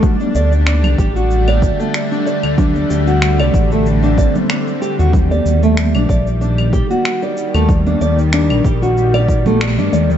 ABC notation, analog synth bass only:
X:1
M:4/4
L:1/16
Q:"Swing 16ths" 1/4=94
K:none
V:1 name="Analog synth bass" clef=bass
z2 D,,3 C,, A,,,4- A,,, z4 D,,- | D,,2 D,,3 C,, A,,,4- A,,, z4 _E,,- | _E,,2 E,,3 _B,,, B,,,4- B,,, z4 E,,- | _E,,2 E,,3 _B,,, B,,,6- B,,, G,, E,,2 |]